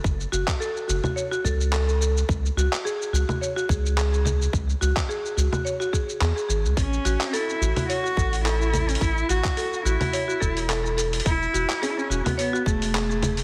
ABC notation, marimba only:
X:1
M:4/4
L:1/16
Q:"Swing 16ths" 1/4=107
K:C#phr
V:1 name="Marimba"
A2 F2 A z F F c F A2 A A A2 | z2 F2 G z F F c F G2 G G G2- | G2 F2 G z F F c F G2 G G G2 | z2 F2 A z F F c F A2 A A A2- |
A2 F2 A z F F c F A2 A A A2 | z2 F2 G z F F c F G2 G G G2 |]